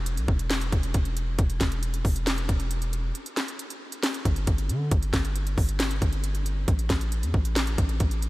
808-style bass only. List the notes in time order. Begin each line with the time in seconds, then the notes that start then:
Already playing: E1
0.17 B1
0.28 E1
0.72 E1
0.94 E1
1.39 E1
1.61 E1
2.05 E1
2.49 E1
4.25 G1
4.47 G1
4.70 D3
4.92 G1
5.13 G1
5.58 G1
6.02 G1
6.68 A1
6.90 A1
7.23 E2
7.34 A1
7.78 A1
8.00 A1